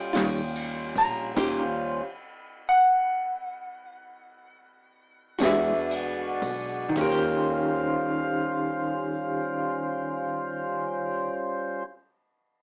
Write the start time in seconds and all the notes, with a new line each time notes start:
Already playing: A#1 G3 C#4 F4 G4 A#4 G5
0.13 D#2 D#3 G3 C#4 F4, snare, ride
0.55 ride
0.96 A#1 A#5, kick, ride
1.34 D#2 D#3 G3 C#4 F4 G4 C5 F5, kick, crash, ride
1.38 C5
2.69 F#5
5.39 E2 E3 G#3 D4 F#4 G#4 B4 D5 F#5, kick, snare, ride
5.44 E5
5.91 ride
6.42 B1, kick, ride
6.89 D#3
6.95 D#2 G#3 C#4 F4 G4 C5 F5, kick, crash
6.99 G4 A#4 C5
7.05 G4
7.11 C5
7.50 G3 C#4 F4 C5